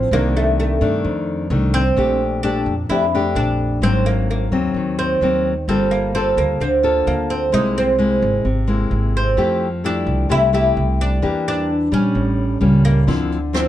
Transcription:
Already playing: oud C4
0.11 upright bass C2, nylon-string guitar C3 D#3 A#3 D4, oud A#3
0.37 oud A3
0.60 oud A3
0.81 upright bass G2, nylon-string guitar D#3 A3 D4
1.04 upright bass F2, nylon-string guitar F2
1.50 upright bass C2, nylon-string guitar D#3 A3 D4
1.74 oud C4
1.96 upright bass A#1, nylon-string guitar A#2 A3 D4 G4
2.43 nylon-string guitar A3 D4 G4, oud D4
2.66 upright bass F2
2.89 upright bass F2, nylon-string guitar F2 A3 D4 G4, oud E4
3.15 nylon-string guitar A3 D4 G4
3.35 upright bass A#1, oud D4
3.82 upright bass G#1, nylon-string guitar G#2 F#3 A#3 C4, oud C4
4.06 oud A#3
4.31 oud A#3
4.52 upright bass D#2, nylon-string guitar F#3 A#3 C4
4.74 upright bass D#2, nylon-string guitar D#3
4.99 oud C4
5.21 upright bass D#2, nylon-string guitar F#3 A#3 C4
5.68 upright bass G1, nylon-string guitar G3 A#3 F4 A4, oud C4
5.91 oud A#3
6.15 nylon-string guitar A#3 F4 A4, oud C4
6.37 upright bass D2, oud A#3
6.60 upright bass D2, nylon-string guitar D3, oud C4
6.83 nylon-string guitar A#3 F4 A4
7.07 upright bass D2, oud A#3
7.30 oud C4
7.52 upright bass C2, nylon-string guitar C3 G#3 A#3 E4, oud D#4
7.78 oud C4
7.99 nylon-string guitar G#3 A#3 E4
8.22 upright bass G#1
8.45 upright bass G#1, nylon-string guitar C3
8.67 nylon-string guitar G#3 A#3 E4
8.91 upright bass G#1
9.17 oud C4
9.37 upright bass F2, nylon-string guitar F3 A3 E4 G4
9.84 nylon-string guitar A3 E4 G4, oud D4
10.06 upright bass C2
10.29 upright bass C2, nylon-string guitar C3 A3 E4 G4, oud E4
10.53 nylon-string guitar A3 E4 G4, oud E4
10.77 upright bass C2
11.01 oud D4
11.22 upright bass E2, nylon-string guitar E3 A#3 D4 G4
11.48 oud D4
11.92 upright bass A#2, nylon-string guitar G3 C#4, oud C#4
12.15 upright bass A1, nylon-string guitar A2
12.61 upright bass C#2, nylon-string guitar G3 A#3 C#4
12.85 oud A#3
13.07 upright bass D2, nylon-string guitar D3 F3 C4 E4, kick, closed hi-hat
13.32 closed hi-hat
13.53 nylon-string guitar F3 C4 E4, oud C4, cross-stick, closed hi-hat

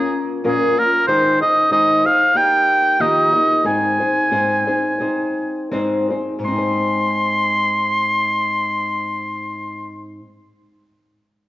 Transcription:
Already playing: nylon-string guitar A#3 C#4 F4 A#4, oboe G#4
0.44 nylon-string guitar A#2 F3 A#3 C#4 F4 A#4, oboe G#4
0.77 nylon-string guitar A#3 F4 A#4, oboe A#4
1.07 nylon-string guitar D#3 G#3 D#4 G#4 C5, oboe C5
1.41 nylon-string guitar D#4 G#4 C5, oboe D#5
1.70 nylon-string guitar D#3 G#3 D#4 G#4 C5, oboe D#5
2.05 nylon-string guitar D#4 G#4 C5, oboe F5
2.34 nylon-string guitar A#3 D#4 G4 D#5, oboe G5
2.99 nylon-string guitar D#3 F3 A#3 D#4 G4 D#5, oboe D#5
3.33 nylon-string guitar A#3 D#4 G4 D#5
3.64 nylon-string guitar G#2 G#3 C4 D#4 G#4 C5, oboe G#5
4.00 nylon-string guitar C4 D#4 G#4 C5
4.31 nylon-string guitar G#2 G#3 C4 D#4 G#4 C5
4.67 nylon-string guitar C4 D#4 G#4 C5
4.99 nylon-string guitar C4 D#4 G#4 C5
5.71 nylon-string guitar G#2 G#3 C4 D#4 G#4 C5
6.10 nylon-string guitar C4 D#4 G#4 C5
6.39 nylon-string guitar G#2
6.44 nylon-string guitar G#3, oboe C6
6.48 nylon-string guitar C4 D#4
6.55 nylon-string guitar G#4 C5

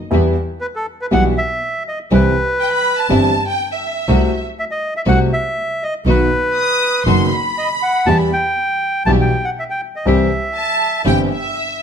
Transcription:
0.11 grand piano E2 E3 G3 B3 G4, double bass E2, string section G3 B3 E4
0.61 bandoneon B4
0.76 bandoneon A4
1.01 bandoneon B4
1.11 grand piano B1 B2 E3 G3 B3 G4, double bass B1, string section G3 B3 E4, bandoneon F#5
1.38 bandoneon E5
1.88 bandoneon D#5
2.10 grand piano C2 C3 E3 G3 C4 G4, double bass C2, string section G3 C4 E4, bandoneon B4
2.60 violin section G5
2.72 violin section B5
2.98 violin section A5
3.09 grand piano G1 G2 E3 G3 C4 G4, double bass G1, string section G3 C4 E4
3.48 violin section G5
3.72 violin section E5
4.08 double bass C2, grand piano C2 C3 F#3 A3 F#4, string section A3 C4 F#4
4.59 bandoneon E5
4.71 bandoneon D#5
4.97 bandoneon E5
5.06 grand piano C2 C3 F#3 A3 F#4, double bass C2, string section A3 C4 F#4, bandoneon F#5
5.33 bandoneon E5
5.83 bandoneon D#5
6.05 double bass B1, grand piano B1 B2 D#3 F#3 B3 F#4, string section B3 D#4 F#4
6.10 bandoneon B4
6.57 violin section D#6
7.05 double bass F#1, grand piano F#1 F#2 D#3 F#3 B3 F#4, string section B3 D#4 F#4, violin section C6
7.32 violin section B5
7.58 bandoneon D#5
7.83 bandoneon F#5
8.06 double bass E2, grand piano E2 E3 G3 B3 G4, string section B3 E4 G4, bandoneon A5
8.33 bandoneon G5
9.06 double bass B1, grand piano B1 B2 E3 G3 B3 G4, string section B3 E4 G4, bandoneon A5
9.21 bandoneon G5
9.45 bandoneon F#5
9.59 bandoneon E5
9.70 bandoneon G5
9.96 bandoneon D#5
10.06 grand piano C2 C3 E3 G3 C4 G4, double bass C2, string section C4 E4 G4, bandoneon E5
10.57 violin section A5
11.04 double bass G1, grand piano G1 G2 E3 G3 C4 G4, string section C4 E4 G4, violin section G5
11.30 violin section E5

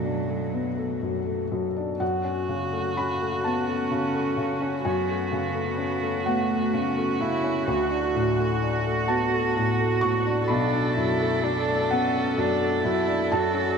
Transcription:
Already playing: felt piano B1 F#2 A3 D4, cello F#3
0.04 felt piano D4
0.29 felt piano A3
0.53 felt piano B3
0.78 felt piano A3
1.02 felt piano F#2
1.26 felt piano A3
1.52 felt piano F#2
1.76 felt piano D4
2.00 felt piano F#2 F#5, viola F#4
2.25 felt piano C#4
2.49 felt piano C#3
2.73 felt piano A3
2.97 felt piano C#4 B5
3.22 felt piano A3
3.44 felt piano B3 A5, cello C#4
3.69 felt piano A3
3.91 felt piano C#3
4.14 felt piano A3
4.37 felt piano C#3
4.62 felt piano C#4
4.85 felt piano F#2 G#5, cello B3, viola F#4
5.09 felt piano A3
5.32 felt piano C#3
5.55 felt piano A3
5.78 felt piano C#4
6.02 felt piano A3
6.26 cello A3, felt piano B3 F#5
6.50 felt piano A3
6.73 felt piano C#3, cello C#4
6.97 felt piano A3
7.20 felt piano C#3, cello E4
7.44 felt piano C#4
7.66 felt piano D2, cello F#4
7.91 felt piano D4
8.15 felt piano A2
8.39 felt piano A3
8.63 felt piano D4
8.86 felt piano A3
9.08 felt piano B3 A5
9.33 felt piano A3
9.57 felt piano A2
9.80 felt piano A3
10.01 felt piano A2 C#6
10.26 felt piano D4
10.48 felt piano B1 B5, cello D4, viola A4
10.73 felt piano D4
10.97 felt piano F#2, cello E4
11.22 felt piano A3
11.43 felt piano D4, cello D4
11.67 felt piano A3
11.91 felt piano B3 F#5, cello C#4
12.14 felt piano A3
12.38 felt piano F#2, cello D4
12.60 felt piano A3
12.85 felt piano F#2, cello E4
13.08 felt piano D4
13.31 felt piano F#2 A5, cello F#4, viola A4
13.54 felt piano C#4

